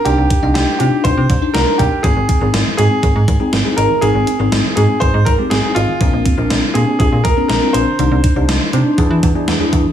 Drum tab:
HH |xxxxxxxx|xxxxxxxx|xxxxxxxx|xxxxxxxx|
SD |--o---o-|--o---o-|--o---o-|--o---o-|
BD |-o--oo-o|oo--oo--|----oo--|oo--oo--|

HH |xxxxxxxx|
SD |--o---o-|
BD |-o--oo-o|